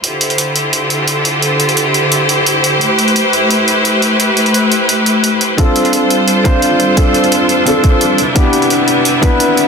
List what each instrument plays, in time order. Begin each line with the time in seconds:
0.03 string section D3 E4 F4 G4 A4 C5, closed hi-hat
0.21 closed hi-hat
0.30 closed hi-hat
0.38 closed hi-hat
0.56 closed hi-hat
0.73 closed hi-hat
0.90 closed hi-hat
1.08 closed hi-hat
1.25 closed hi-hat
1.42 closed hi-hat
1.60 closed hi-hat
1.69 closed hi-hat
1.77 closed hi-hat
1.94 closed hi-hat
2.12 closed hi-hat
2.29 closed hi-hat
2.46 closed hi-hat
2.64 closed hi-hat
2.81 string section A3 B4, closed hi-hat
2.99 closed hi-hat
3.08 closed hi-hat
3.16 closed hi-hat
3.33 closed hi-hat
3.51 closed hi-hat
3.68 closed hi-hat
3.85 closed hi-hat
4.02 closed hi-hat
4.20 closed hi-hat
4.37 closed hi-hat
4.46 closed hi-hat
4.54 closed hi-hat
4.72 closed hi-hat
4.89 closed hi-hat
5.06 closed hi-hat
5.24 closed hi-hat
5.41 closed hi-hat
5.57 string section G3 D4 F4 A4 C5, felt piano C4 D4 F4 A4, kick, closed hi-hat
5.76 closed hi-hat
5.85 closed hi-hat
5.93 closed hi-hat
6.10 closed hi-hat
6.28 closed hi-hat
6.44 felt piano C4 D4 F4 C5, kick, closed hi-hat
6.62 closed hi-hat
6.80 closed hi-hat
6.97 felt piano C4 D4 F4 A4, kick, closed hi-hat
7.14 closed hi-hat
7.24 closed hi-hat
7.32 closed hi-hat
7.49 closed hi-hat
7.66 felt piano C4 D4 F4 A4, closed hi-hat
7.84 kick, closed hi-hat
8.01 closed hi-hat
8.18 string section C3 E4 G4 B4, closed hi-hat
8.35 felt piano B3 D4 E4 G4, kick, closed hi-hat
8.53 closed hi-hat
8.62 closed hi-hat
8.70 closed hi-hat
8.88 closed hi-hat
9.05 closed hi-hat
9.22 felt piano B3 D4 E4 B4, kick, closed hi-hat
9.40 closed hi-hat
9.57 closed hi-hat